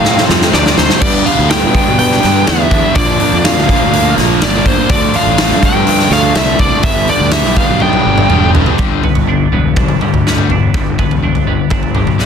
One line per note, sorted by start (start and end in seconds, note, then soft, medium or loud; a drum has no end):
0.00 0.23 A2 medium
0.00 0.53 C3 medium
0.00 0.54 F3 medium
0.00 0.54 A3 medium
0.00 0.55 C4 medium
0.00 0.97 F4 medium
0.00 1.00 A4 medium
0.00 1.00 C5 medium
0.00 0.24 F5 medium
0.00 0.97 A5 medium
0.04 0.29 F3 medium
0.04 0.28 A3 medium
0.04 0.27 C4 medium
0.04 snare medium
0.18 snare medium
0.28 0.50 F2 medium
0.28 0.53 F3 medium
0.28 0.54 A3 medium
0.28 0.54 C4 medium
0.28 snare medium
0.42 snare medium
0.53 0.74 D2 medium
0.53 1.00 F2 medium
0.53 1.00 C3 medium
0.53 0.78 F3 loud
0.53 0.77 A3 medium
0.53 0.75 C4 loud
0.53 0.76 D5 medium
0.53 snare medium
0.66 snare medium
0.77 0.88 D2 medium
0.77 1.01 F3 medium
0.77 1.00 A3 medium
0.77 1.00 C4 medium
0.77 1.01 C5 medium
0.77 snare loud
0.90 snare medium
1.01 1.22 G2 loud
1.01 1.49 G2 loud
1.01 1.50 D3 medium
1.01 1.27 G3 loud
1.01 1.26 B3 medium
1.01 8.75 D4 medium
1.01 1.25 D4 loud
1.01 2.95 G4 medium
1.01 2.94 B4 medium
1.01 1.27 D5 loud
1.01 2.94 G5 medium
1.01 kick loud
1.01 crash loud
1.25 1.51 G3 medium
1.25 1.51 B3 medium
1.25 1.52 D4 medium
1.25 1.50 F5 loud
1.25 open hi-hat medium
1.39 1.65 D2 medium
1.50 1.99 G2 medium
1.50 1.98 D3 loud
1.50 1.75 G3 medium
1.50 1.74 B3 loud
1.50 1.74 D4 medium
1.50 1.98 G5 loud
1.50 snare loud
1.50 open hi-hat medium
1.63 1.73 B2 medium
1.74 1.99 G3 medium
1.74 2.00 B3 medium
1.74 2.02 D4 medium
1.74 kick medium
1.74 open hi-hat medium
1.88 2.18 B2 medium
1.99 2.47 D3 medium
1.99 2.24 G3 medium
1.99 2.23 B3 medium
1.99 2.23 D4 medium
1.99 2.44 G5 loud
1.99 open hi-hat medium
2.12 snare soft
2.23 2.44 G2 loud
2.23 2.48 G3 medium
2.23 2.48 B3 medium
2.23 2.50 D4 medium
2.23 snare soft
2.23 open hi-hat medium
2.47 2.69 E2 medium
2.47 2.95 G2 loud
2.47 2.95 D3 medium
2.47 2.73 G3 loud
2.47 2.72 B3 loud
2.47 2.71 D4 loud
2.47 2.98 E5 loud
2.47 snare loud
2.47 open hi-hat medium
2.71 2.82 E2 loud
2.71 2.96 G3 medium
2.71 2.95 B3 medium
2.71 2.98 D4 medium
2.71 kick medium
2.71 open hi-hat medium
2.95 3.17 A#1 loud
2.95 3.43 A#2 medium
2.95 3.45 D3 medium
2.95 3.23 F3 medium
2.95 3.21 A#3 medium
2.95 3.21 D4 medium
2.95 6.81 F4 medium
2.95 4.89 A#4 medium
2.95 3.46 D5 medium
2.95 6.81 F5 medium
2.95 kick loud
2.95 open hi-hat medium
3.20 3.46 F3 medium
3.20 3.46 A#3 medium
3.20 3.47 D4 medium
3.20 open hi-hat medium
3.33 3.57 F2 medium
3.44 3.93 A#2 medium
3.44 3.92 D3 medium
3.44 3.71 F3 loud
3.44 3.69 A#3 loud
3.44 3.69 D4 loud
3.44 4.13 F5 medium
3.44 snare loud
3.44 open hi-hat medium
3.57 3.67 D2 loud
3.57 snare soft
3.69 3.93 F3 medium
3.69 3.94 A#3 medium
3.69 3.95 D4 medium
3.69 kick medium
3.69 open hi-hat medium
3.81 4.12 D2 medium
3.93 4.41 D3 medium
3.93 4.19 F3 medium
3.93 4.18 A#3 medium
3.93 4.17 D4 medium
3.93 open hi-hat medium
4.17 4.38 A#1 loud
4.17 4.42 F3 medium
4.17 4.42 A#3 medium
4.17 4.44 D4 medium
4.17 snare soft
4.17 open hi-hat medium
4.41 4.63 G1 medium
4.41 4.89 A#2 loud
4.41 4.89 D3 medium
4.41 4.67 F3 medium
4.41 4.66 A#3 loud
4.41 4.66 D4 loud
4.41 4.65 D5 medium
4.41 snare loud
4.41 open hi-hat medium
4.65 4.76 G1 loud
4.65 4.90 F3 medium
4.65 4.89 A#3 medium
4.65 4.92 D4 medium
4.65 4.90 C5 medium
4.65 kick medium
4.65 open hi-hat medium
4.89 5.10 D2 loud
4.89 5.37 D3 medium
4.89 5.15 F3 medium
4.89 5.14 A3 medium
4.89 5.14 D4 loud
4.89 6.82 A4 medium
4.89 5.15 D5 loud
4.89 kick loud
4.89 open hi-hat medium
5.14 5.38 F3 medium
5.14 5.39 A3 medium
5.14 5.40 D4 medium
5.14 5.60 F5 loud
5.14 open hi-hat medium
5.27 5.52 A1 medium
5.38 5.86 D3 medium
5.38 5.64 F3 loud
5.38 5.63 A3 medium
5.38 5.63 D4 loud
5.38 snare loud
5.38 open hi-hat medium
5.51 5.61 G2 medium
5.51 snare soft
5.63 5.87 F3 medium
5.63 5.88 A3 medium
5.63 5.90 D4 medium
5.63 6.12 G5 loud
5.63 kick medium
5.63 open hi-hat medium
5.75 6.06 G2 medium
5.87 6.34 D3 medium
5.87 6.12 F3 medium
5.87 6.11 A3 medium
5.87 6.10 D4 medium
5.87 open hi-hat medium
5.99 snare soft
6.10 6.31 D2 loud
6.10 6.35 F3 medium
6.10 6.36 A3 medium
6.10 6.37 D4 medium
6.10 6.35 F5 loud
6.10 snare soft
6.10 open hi-hat medium
6.35 6.56 C2 medium
6.35 6.83 D3 medium
6.35 6.61 F3 medium
6.35 6.60 A3 loud
6.35 6.59 D4 loud
6.35 6.59 E5 loud
6.35 snare loud
6.35 open hi-hat medium
6.59 6.70 C2 loud
6.59 6.84 F3 medium
6.59 6.83 A3 medium
6.59 6.86 D4 medium
6.59 6.85 D5 medium
6.59 kick medium
6.59 open hi-hat medium
6.83 7.05 G1 loud
6.83 7.32 G2 medium
6.83 7.32 D3 medium
6.83 7.09 G3 medium
6.83 7.08 B3 medium
6.83 7.07 D4 loud
6.83 8.77 G4 medium
6.83 8.77 B4 medium
6.83 7.09 E5 loud
6.83 8.77 G5 medium
6.83 kick loud
6.83 open hi-hat medium
7.07 7.33 G3 medium
7.07 7.33 B3 medium
7.07 7.34 D4 medium
7.07 7.32 D5 medium
7.07 open hi-hat medium
7.20 7.44 D2 medium
7.31 7.82 G2 medium
7.31 7.80 D3 loud
7.31 7.58 G3 loud
7.31 7.57 B3 loud
7.31 7.56 D4 medium
7.31 7.55 E5 medium
7.31 snare loud
7.31 open hi-hat medium
7.44 7.55 B1 medium
7.44 snare soft
7.56 7.81 G3 medium
7.56 7.82 B3 medium
7.56 7.83 D4 medium
7.56 7.80 F5 loud
7.56 kick medium
7.56 open hi-hat medium
7.69 8.00 B1 medium
7.80 8.29 D3 medium
7.80 8.07 G3 medium
7.80 8.06 B3 medium
7.80 8.05 D4 medium
7.80 8.51 G5 medium
7.80 high tom medium
7.93 high tom medium
8.06 8.27 G1 loud
8.06 8.30 G3 medium
8.06 8.30 B3 medium
8.06 8.31 D4 medium
8.18 mid tom medium
8.30 8.51 E1 medium
8.30 8.77 G2 medium
8.30 8.78 D3 medium
8.30 8.56 G3 medium
8.30 8.55 B3 loud
8.30 8.54 D4 medium
8.30 mid tom medium
8.55 8.65 E1 medium
8.55 8.79 G3 medium
8.55 8.78 B3 medium
8.55 8.78 D4 medium
8.55 floor tom medium
8.66 floor tom medium
8.78 9.00 G1 loud
8.78 10.75 G2 medium
8.78 9.02 G2 medium
8.78 9.02 D3 loud
8.78 9.02 G3 medium
8.78 kick loud
8.78 floor tom medium
9.03 9.25 G2 medium
9.03 9.26 D3 medium
9.03 9.52 B3 medium
9.03 floor tom medium
9.15 9.46 G1 medium
9.15 floor tom medium
9.27 9.49 G2 medium
9.27 9.50 D3 medium
9.27 9.77 D4 medium
9.52 9.73 E1 medium
9.52 9.74 G2 medium
9.52 9.74 D3 medium
9.52 10.26 B3 medium
9.76 9.97 B1 medium
9.76 9.99 G2 medium
9.76 9.99 D3 medium
9.76 10.50 D4 medium
9.76 kick loud
9.76 floor tom medium
9.76 mid tom medium
9.88 floor tom medium
9.88 mid tom medium
10.01 10.23 G2 medium
10.01 10.23 D3 medium
10.01 11.23 G3 medium
10.01 mid tom medium
10.14 10.52 D2 medium
10.14 floor tom medium
10.27 10.49 G2 medium
10.27 10.49 D3 medium
10.27 10.49 G3 medium
10.27 10.98 B3 medium
10.27 snare medium
10.38 mid tom medium
10.50 10.71 E1 medium
10.50 10.72 G2 medium
10.50 10.72 D3 medium
10.50 11.22 D4 medium
10.50 floor tom medium
10.74 10.95 G1 loud
10.74 10.96 G2 medium
10.74 11.96 G2 medium
10.74 10.97 D3 medium
10.74 kick loud
10.74 floor tom medium
10.98 11.20 G2 medium
10.98 11.20 D3 medium
10.98 11.46 B3 medium
10.98 kick medium
10.98 floor tom medium
11.11 11.31 E1 medium
11.11 floor tom medium
11.22 11.44 G2 medium
11.22 11.45 D3 medium
11.22 11.71 D4 medium
11.35 floor tom medium
11.47 11.57 G1 medium
11.47 11.69 G2 medium
11.47 11.69 D3 medium
11.47 12.19 B3 medium
11.70 12.02 G1 medium
11.70 11.93 G2 medium
11.70 11.93 D3 medium
11.70 12.26 D4 medium
11.70 kick loud
11.70 floor tom medium
11.70 mid tom medium
11.83 floor tom medium
11.83 mid tom medium
11.95 12.17 G2 medium
11.95 12.17 D3 medium
11.95 12.26 G3 medium
11.95 floor tom medium
11.95 mid tom medium
12.07 12.26 B1 medium
12.07 floor tom medium
12.18 12.26 G2 medium
12.18 12.26 D3 medium
12.18 12.26 G3 medium
12.18 12.26 B3 medium
12.18 snare medium